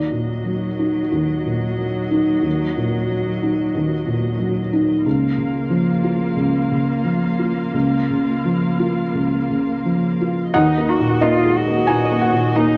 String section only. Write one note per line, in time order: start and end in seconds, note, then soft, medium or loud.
0.00 5.01 A#3 soft
0.00 5.01 F#4 soft
0.00 5.01 D#5 soft
5.04 10.50 A#3 soft
5.04 10.54 F4 soft
5.04 10.54 F5 soft
10.54 12.77 F#3 medium
10.54 12.77 A#3 medium
10.54 12.77 D#5 medium